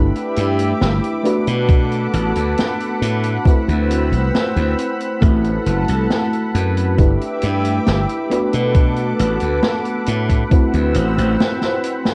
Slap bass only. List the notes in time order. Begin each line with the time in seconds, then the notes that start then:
Already playing: G1
0.37 G2
0.81 G1
1.48 B2
2.13 A1
2.36 D2
3.02 A2
3.68 D2
4.12 C2
4.56 D2
5.22 A1
5.66 F#1
5.89 C2
6.55 F#2
6.99 G1
7.43 G2
7.88 G1
8.54 B2
9.20 A1
9.42 D2
10.08 A2
10.74 D2
10.95 A1
11.18 A1